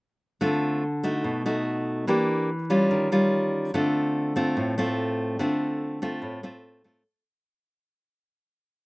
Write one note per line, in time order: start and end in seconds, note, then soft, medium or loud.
0.41 1.22 D3 medium
0.41 0.82 A3 medium
0.41 0.83 C4 medium
0.41 0.83 F4 medium
1.04 1.42 A3 medium
1.04 1.42 D#4 medium
1.04 1.42 F#4 medium
1.24 2.05 B2 medium
1.46 2.04 A3 medium
1.46 2.04 D#4 medium
1.46 2.05 F#4 medium
2.07 2.88 E3 medium
2.07 2.49 A#3 medium
2.07 2.49 D4 medium
2.07 2.49 G4 medium
2.70 3.08 G3 medium
2.70 3.08 C#4 medium
2.70 3.08 F4 medium
2.91 3.71 D#3 medium
3.12 3.70 G3 medium
3.12 3.70 C#4 medium
3.12 3.71 F4 medium
3.74 4.54 D3 medium
3.74 4.32 A3 medium
3.74 4.33 C4 medium
3.74 4.33 F4 medium
4.36 4.74 A3 medium
4.36 4.74 C4 medium
4.36 4.74 F4 medium
4.57 5.37 A2 medium
4.78 5.36 A3 medium
4.78 5.36 C4 medium
4.78 5.37 F4 medium
5.39 6.20 D3 medium
5.39 5.98 A3 medium
5.39 5.98 C4 medium
5.39 5.99 F4 medium
6.02 6.40 A3 medium
6.02 6.40 C4 medium
6.02 6.40 F4 medium
6.22 7.03 A2 medium
6.43 6.81 A3 medium
6.43 6.81 C4 medium
6.43 6.82 F4 medium
6.84 7.02 A3 medium
6.84 7.02 C4 medium
6.84 7.02 F4 medium